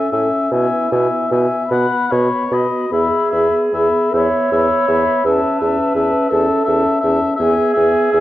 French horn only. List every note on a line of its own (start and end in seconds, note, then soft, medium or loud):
0.00 0.11 C#4 soft
0.12 0.50 C#4 soft
0.51 0.90 B3 soft
0.92 1.31 B3 soft
1.33 1.71 B3 soft
1.73 2.11 B3 soft
2.11 2.50 B3 soft
2.51 2.89 B3 soft
2.90 3.19 B3 soft
3.31 3.72 B3 soft
3.72 4.13 B3 soft
4.14 4.52 B3 soft
4.54 4.88 B3 soft
4.89 5.24 B3 soft
5.26 5.60 C#4 soft
5.61 5.95 C#4 soft
5.96 6.30 C#4 soft
6.31 6.66 C#4 soft
6.66 7.01 C#4 soft
7.03 7.38 C#4 soft
7.39 7.75 B3 soft
7.76 8.12 B3 soft
8.13 8.20 B3 soft